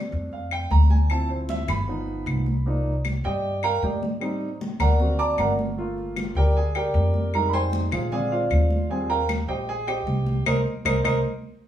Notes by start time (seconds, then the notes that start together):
Already playing: A3 C4 D4
0.12 F2, high conga
0.32 F5, high conga
0.51 G5, high conga, claves
0.71 D2 A#5, high conga
0.90 G#5, high conga
1.10 F3 C4 E4 A5, high conga, claves
1.29 C5, high conga
1.49 E5, high conga
1.68 G1 B5, high conga, low conga, claves
1.88 F3 B3 D#4, high conga
2.07 high conga
2.26 C2, high conga, claves
2.46 high conga
2.66 F3 A#3 D4 D#4, high conga
2.86 high conga
3.05 high conga, claves
3.24 G2 G4 D5 D#5 G5, high conga
3.44 high conga
3.63 A#4 F5 G5 A#5, high conga, claves
3.82 A2 G4 D5 D#5 G5, high conga
4.03 high conga
4.21 G3 C4 D#4, high conga, claves
4.41 high conga
4.61 high conga
4.79 D2 A#4 D5 F#5 A#5, high conga, low conga, claves
4.99 A#3 C4 F#4, high conga, low conga
5.19 D5 A5 A#5 D6, high conga
5.38 G1 A#4 D5 F#5 A#5, high conga, claves
5.59 high conga
5.78 A3 A#3 F4, high conga
5.98 high conga
6.16 high conga, claves
6.35 D2 G4 A#4 D5 G5, high conga
6.56 G#4 G#5, high conga
6.75 G4 A#4 D5 G5, high conga, claves
6.94 F2, high conga
7.14 high conga
7.34 G3 G#3 D#4 A#4 A#5, high conga, claves
7.49 B5
7.53 C5 G5 G#5 C6, high conga
7.73 high conga
7.91 A#1 F4 G#4 C5 F5, high conga, low conga, claves
8.11 D3 G#3 C4 G#4 D5 F5 G#5, high conga, low conga
8.31 F4 C5 D5 F5, high conga
8.50 D#2, high conga, claves
8.70 high conga
8.90 F3 G3 C4 G#4 G#5, high conga
9.10 A#4 F5 G5 A#5, high conga
9.29 high conga, claves
9.48 A#1 G4 C5 D#5 G5, high conga
9.68 G#4 G#5, high conga
9.87 G4 C5 D#5 G5, high conga, claves
10.07 C2, high conga
10.26 high conga
10.46 C2 A#4 C5 D#5, high conga, claves
10.85 C2 A#4 C5 D#5, high conga, claves
11.04 C2 A#4 C5 D#5, high conga, claves